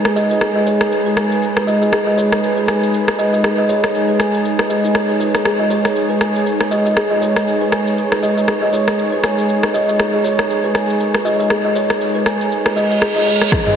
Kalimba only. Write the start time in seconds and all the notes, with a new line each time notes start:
0.05 B4
0.16 D#5
0.30 D#5
0.41 G#4
0.56 D#5
0.66 C#5
1.06 B4
1.17 G#5
1.57 B4
1.67 D#5
1.82 D#5
1.92 G#4
2.07 D#5
2.18 C#5
2.57 B4
2.68 G#5
3.08 B4
3.19 D#5
3.33 D#5
3.44 G#4
3.58 D#5
3.69 C#5
4.09 B4
4.19 G#5
4.59 B4
4.70 D#5
4.84 D#4
4.95 C#5
5.09 B4
5.20 C#5
5.45 G#4
5.59 D#5
5.70 C#5
6.10 B4
6.21 G#5
6.60 B4
6.71 D#5
6.85 D#5
6.96 G#4
7.11 D#5
7.22 C#5
7.61 B4
7.72 G#5
8.12 B4
8.23 D#5
8.37 D#5
8.48 G#4
8.62 D#5
8.73 C#5
9.12 B4
9.23 G#5
9.63 B4
9.74 D#5
9.88 D#5
9.99 G#4
10.14 D#5
10.24 C#5
10.64 B4
10.75 G#5
11.14 B4
11.25 D#5
11.39 D#5
11.50 G#4
11.65 D#5
11.75 C#5
12.15 B4
12.26 G#5
12.65 B4
12.76 D#5
12.91 D#5
13.01 G#4
13.16 D#5
13.27 C#5
13.52 G#4
13.66 D#5